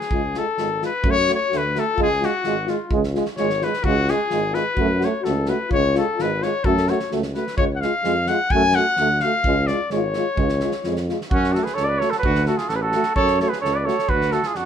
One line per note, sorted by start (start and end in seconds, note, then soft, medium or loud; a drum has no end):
0.00 0.40 G#4 medium
0.00 snare soft
0.11 0.37 C#2 medium
0.11 0.23 G#3 medium
0.11 0.21 F4 medium
0.11 kick medium
0.34 0.46 G#3 medium
0.34 0.44 F4 medium
0.34 snare soft
0.38 0.84 A4 medium
0.57 0.83 G#1 medium
0.57 0.68 G#3 medium
0.57 0.67 F4 medium
0.57 snare soft
0.81 0.91 G#3 medium
0.81 0.90 F4 medium
0.81 snare soft
0.85 1.12 B4 loud
1.04 1.30 F#2 medium
1.04 1.15 A3 medium
1.04 1.13 F#4 medium
1.04 kick medium
1.11 1.32 C#5 loud
1.27 1.38 A3 medium
1.27 1.37 F#4 medium
1.27 snare soft
1.35 1.59 C#5 loud
1.49 1.78 D2 medium
1.49 1.62 A3 medium
1.49 1.59 F#4 medium
1.49 snare soft
1.57 1.81 B4 medium
1.73 1.85 A3 medium
1.73 1.83 F#4 medium
1.73 snare soft
1.79 2.01 A4 loud
1.95 2.25 C#2 medium
1.95 2.05 F4 medium
1.95 kick medium
2.00 2.09 G#3 medium
2.00 2.27 G#4 loud
2.20 2.32 G#3 medium
2.20 2.30 F4 medium
2.20 snare soft
2.25 2.71 F#4 loud
2.43 2.72 G#1 medium
2.43 2.56 G#3 medium
2.43 2.53 F4 medium
2.43 snare soft
2.65 2.78 G#3 medium
2.65 2.75 F4 medium
2.65 snare soft
2.70 2.93 F4 medium
2.90 3.18 C#2 medium
2.90 3.02 G#3 medium
2.90 3.00 F4 medium
2.90 kick medium
3.04 snare soft
3.14 3.25 G#3 medium
3.14 3.24 F4 medium
3.14 snare soft
3.26 snare soft
3.36 3.65 G#1 medium
3.36 3.48 G#3 medium
3.36 3.46 F4 medium
3.36 3.65 C#5 medium
3.36 snare soft
3.50 snare soft
3.59 3.69 F4 medium
3.59 snare soft
3.64 3.73 G#3 medium
3.64 3.85 B4 medium
3.74 snare soft
3.83 4.12 C#2 loud
3.83 3.96 G#3 medium
3.83 3.93 F4 medium
3.83 4.11 F#4 loud
3.83 kick medium
4.07 4.17 F4 medium
4.07 4.56 G#4 loud
4.07 snare soft
4.11 4.20 G#3 medium
4.28 4.41 G#3 medium
4.28 4.38 F4 medium
4.28 snare soft
4.33 4.59 G#1 medium
4.51 4.65 G#3 medium
4.51 4.62 F4 medium
4.51 5.06 B4 loud
4.51 snare soft
4.76 5.04 F#2 medium
4.76 4.89 A3 medium
4.76 4.86 F#4 medium
4.76 kick medium
4.97 5.08 F#4 medium
5.01 5.12 A3 medium
5.01 5.25 C#5 medium
5.01 snare soft
5.22 5.51 C#2 medium
5.22 5.35 A3 medium
5.22 5.32 F#4 medium
5.22 5.51 A4 medium
5.22 snare soft
5.46 5.58 A3 medium
5.46 5.57 F#4 medium
5.46 5.71 B4 medium
5.46 snare soft
5.68 5.79 F4 medium
5.68 5.94 C#5 loud
5.68 kick medium
5.72 5.98 C#2 loud
5.72 5.82 G#3 medium
5.94 6.06 G#3 medium
5.94 6.04 F4 medium
5.94 snare soft
5.98 6.23 A4 medium
6.16 6.45 G#1 medium
6.16 6.26 F4 medium
6.16 snare soft
6.22 6.31 G#3 medium
6.22 6.44 B4 medium
6.40 6.53 G#3 medium
6.40 6.50 F4 medium
6.40 6.66 C#5 loud
6.40 snare soft
6.64 6.91 F#2 loud
6.64 6.76 A3 medium
6.64 6.75 F#4 medium
6.64 6.91 A4 loud
6.64 kick medium
6.77 snare soft
6.88 6.98 A3 medium
6.88 6.98 F#4 medium
6.88 7.13 C#5 medium
6.88 snare soft
7.00 snare soft
7.11 7.38 C#2 medium
7.11 7.22 A3 medium
7.11 7.20 F#4 medium
7.11 snare soft
7.23 snare soft
7.35 7.45 A3 medium
7.35 7.45 F#4 medium
7.35 7.57 B4 medium
7.35 snare soft
7.47 snare soft
7.57 7.85 C#2 medium
7.57 7.67 G#3 medium
7.57 7.67 F4 medium
7.57 7.65 C#5 loud
7.57 kick medium
7.76 7.82 F#5 medium
7.81 7.92 G#3 medium
7.81 7.92 F4 medium
7.81 8.30 F5 loud
7.81 snare soft
8.04 8.31 F2 medium
8.04 8.13 G#3 medium
8.04 8.15 F4 medium
8.04 snare soft
8.27 8.38 G#3 medium
8.27 8.38 F4 medium
8.27 8.52 F#5 loud
8.27 snare soft
8.50 8.78 F#2 medium
8.50 8.63 A3 medium
8.50 8.62 F#4 medium
8.50 8.77 G#5 loud
8.50 kick medium
8.72 8.85 A3 medium
8.72 9.23 F#5 loud
8.72 snare soft
8.77 8.86 F#4 medium
8.97 9.24 D2 medium
8.97 9.09 A3 medium
8.97 9.09 F#4 medium
8.97 snare soft
9.20 9.32 F#4 medium
9.20 9.69 F5 loud
9.20 snare soft
9.25 9.33 A3 medium
9.44 9.70 C#2 loud
9.44 9.56 G#3 medium
9.44 9.57 F4 medium
9.44 kick medium
9.67 9.78 G#3 medium
9.67 9.79 F4 medium
9.67 9.91 D5 medium
9.67 snare soft
9.90 10.17 G#1 medium
9.90 10.01 G#3 medium
9.90 11.04 C#5 medium
9.90 snare soft
9.94 10.03 F4 medium
10.14 10.25 G#3 medium
10.14 10.26 F4 medium
10.14 snare soft
10.37 10.64 C#2 loud
10.37 10.46 G#3 medium
10.37 10.49 F4 medium
10.37 kick medium
10.49 snare soft
10.60 10.72 G#3 medium
10.60 10.72 F4 medium
10.60 snare soft
10.72 snare soft
10.84 11.10 F2 loud
10.84 10.96 G#3 medium
10.84 10.93 F4 medium
10.84 snare soft
10.96 snare soft
11.08 11.19 G#3 medium
11.08 11.17 F4 medium
11.08 snare soft
11.21 snare soft
11.30 11.56 F#2 loud
11.30 11.54 C#4 loud
11.30 11.55 F#4 medium
11.30 kick medium
11.44 snare soft
11.52 11.65 A3 medium
11.52 11.65 F#4 medium
11.52 11.64 F#4 medium
11.52 11.65 A4 medium
11.52 snare soft
11.63 11.76 G#4 medium
11.63 11.75 B4 medium
11.63 snare soft
11.74 12.02 C#2 medium
11.74 11.90 A4 medium
11.74 11.85 C#5 loud
11.74 snare soft
11.84 11.99 D5 loud
11.89 12.03 B4 medium
11.98 12.10 A3 medium
11.98 12.10 F#4 medium
11.98 12.15 A4 medium
11.98 12.11 C#5 medium
11.98 snare soft
12.10 12.23 F#4 medium
12.10 12.18 A4 loud
12.10 snare soft
12.18 12.48 B4 medium
12.23 12.49 D2 loud
12.23 12.46 F#4 loud
12.23 kick medium
12.35 snare soft
12.46 12.57 A3 medium
12.46 12.59 F#4 medium
12.46 12.57 F#4 medium
12.46 12.59 A4 medium
12.46 snare soft
12.57 12.70 F4 medium
12.57 12.70 G#4 medium
12.57 snare soft
12.68 12.95 A1 medium
12.68 12.75 F#4 medium
12.68 12.77 A4 loud
12.68 snare soft
12.74 12.83 G#4 medium
12.74 12.83 B4 medium
12.82 13.14 F#4 medium
12.82 13.15 A4 loud
12.92 13.03 A3 medium
12.92 13.03 F#4 medium
12.92 snare soft
13.03 snare soft
13.15 13.42 F#2 medium
13.15 13.37 A4 loud
13.15 13.38 C#5 loud
13.15 kick medium
13.27 snare soft
13.40 13.50 A3 medium
13.40 13.51 F#4 medium
13.40 13.51 A4 medium
13.40 13.50 C#5 medium
13.40 snare soft
13.49 13.61 G#4 medium
13.49 13.60 B4 medium
13.53 snare soft
13.61 13.88 C#2 medium
13.61 13.75 A4 medium
13.61 13.77 C#5 loud
13.65 snare soft
13.74 13.86 B4 medium
13.74 13.86 D5 medium
13.85 13.95 A3 medium
13.85 13.96 F#4 medium
13.85 14.11 A4 medium
13.85 14.10 C#5 medium
13.85 snare soft
13.99 snare soft
14.09 14.35 D2 loud
14.09 14.34 F#4 medium
14.09 14.33 B4 loud
14.09 kick medium
14.21 snare soft
14.31 14.41 A3 medium
14.31 14.41 F#4 medium
14.31 14.46 F#4 medium
14.31 14.48 A4 medium
14.31 snare soft
14.43 14.55 F4 medium
14.43 14.58 G#4 medium
14.43 snare soft
14.54 14.65 F2 medium
14.54 14.65 D4 medium
14.54 14.65 F#4 medium
14.54 snare soft